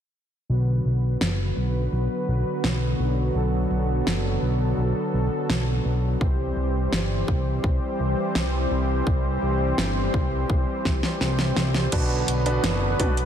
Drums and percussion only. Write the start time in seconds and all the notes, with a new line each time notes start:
1.21 snare
2.64 snare
4.07 snare
5.50 snare
6.21 kick
6.93 snare
7.28 kick
7.64 kick
8.35 snare
9.07 kick
9.78 snare
10.14 kick
10.50 kick
10.85 kick, snare
11.03 snare
11.21 snare
11.39 snare
11.56 snare
11.74 snare
11.92 kick, closed hi-hat, crash
12.28 closed hi-hat
12.46 closed hi-hat
12.64 snare, closed hi-hat
13.00 kick, closed hi-hat, mid tom
13.17 closed hi-hat